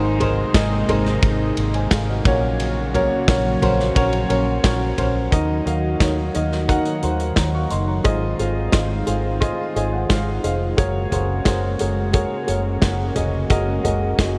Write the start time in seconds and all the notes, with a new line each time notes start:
Already playing: G#1 G#2 C3 G#3 A#3 D#4 G#4 A#4 C5
0.20 D#4 G#4 A#4 C5, floor tom, ride
0.54 G#1 D#4 G#4 A#4 D#5, kick, snare, ride
0.89 G#1 D#4 G#4 A#4 C5, floor tom, ride
1.05 snare
1.23 G#1, kick, ride
1.57 G#1, ride
1.74 C5 G#5, ride
1.91 G#1 G#4 F5, kick, snare, ride
2.10 F#4 D#5
2.25 A#1 A#2 C#3 F#3 C#4 F#4 A#4 C#5, kick, floor tom, ride
2.60 ride
2.94 C#4 F#4 A#4 C#5, floor tom, ride
3.28 A#1 C#4 F#4 A#4 C#5, kick, snare, ride
3.61 A#1 C#4 F#4 A#4 C5, floor tom, ride
3.80 snare
3.95 A#1 C#4 F#4 A#4 C#5, kick, ride
4.13 ride
4.29 A#1 C#4 F#4 A#4 C#5, ride
4.63 A#1 C#4 F#4 A#4 C#5, kick, snare, ride
4.97 A#1 C#4 F#4 A#4 C5, floor tom, ride
5.31 D#2 D#3 F#3 A#3 D#4 F#4 A#4 D#5, kick, closed hi-hat
5.65 D#2 D#4 F#4 A#4 F5, closed hi-hat
6.00 D#2 D#4 F#4 A#4 C#5, kick, snare, closed hi-hat
6.34 D#2 D#4 F#4 A#4 D#5, closed hi-hat
6.52 snare
6.68 D#4 F#4 A#4 F#5, kick, closed hi-hat
6.86 closed hi-hat
7.02 D#2 D#4 F#4 A#4 C5, closed hi-hat
7.20 closed hi-hat
7.36 D#2 C#5 A#5, kick, snare, closed hi-hat
7.54 F5 C#6
7.71 F#1 D#5 C6, closed hi-hat
7.87 C#5 A#5
8.04 G#1 G#2 G#3 C4 F4 G#4 C5 D#5, kick, closed hi-hat
8.39 G#1 F4 G#4 C5 F5, closed hi-hat
8.72 G#1 F4 G#4 C5 D#5, kick, snare, closed hi-hat
9.06 G#1 F4 G#4 C5 F5, closed hi-hat
9.41 F4 G#4 C5 D#5, kick, closed hi-hat
9.75 G#1 F4 G#4 C5 D#5 G#5, closed hi-hat
9.93 F#5
10.09 G#1 F4 G#4 C5 F5, kick, snare, closed hi-hat
10.43 F1 F4 G#4 C5 D#5 F5, closed hi-hat
10.77 F#1 C#3 A#3 F#4 G#4 A#4 C#5, kick, closed hi-hat
11.11 F#1 F#4 G#4 A#4 C5, closed hi-hat, floor tom
11.45 F#1 F#4 G#4 A#4 C5, kick, snare, closed hi-hat
11.79 F#1 F#4 G#4 A#4 C#5, closed hi-hat
12.13 F#4 G#4 A#4 C#5, kick, closed hi-hat
12.47 F#1 F#4 G#4 A#4 C#5, closed hi-hat
12.81 F#1 F#4 G#4 A#4 C#5, kick, snare, closed hi-hat
13.15 F1 F#4 G#4 A#4 D#5, closed hi-hat, floor tom
13.50 F#1 F#4 G#4 A#4 D#5, kick, closed hi-hat
13.83 F#1 F#4 G#4 A#4 D#5, closed hi-hat, floor tom
14.19 F#1 F#4 G#4 A#4 D#5, kick, snare, closed hi-hat